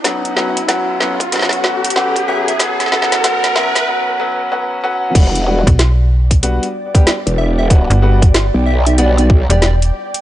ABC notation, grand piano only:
X:1
M:4/4
L:1/16
Q:"Swing 16ths" 1/4=94
K:Edor
V:1 name="Grand piano"
[F,B,CF]2 [F,B,CF] z [F,B,CF]2 [F,B,CF] z [F,B,CF]2 [F,B,CF] z [F,B,CF]2 [F,B,CF] z | [F,B,CF]2 [F,B,CF]2 [F,B,CF]2 [F,B,CF]2 [F,B,CF]2 [F,B,CF]2 [F,B,CF]2 [F,B,CF]2 | [G,B,D]2 [G,B,DF] z4 z [G,B,DF] z2 [G,B,DG] z4 | [G,B,DF]2 [G,B,DF] z4 z [G,B,DF] z2 [G,B,DG] z4 |]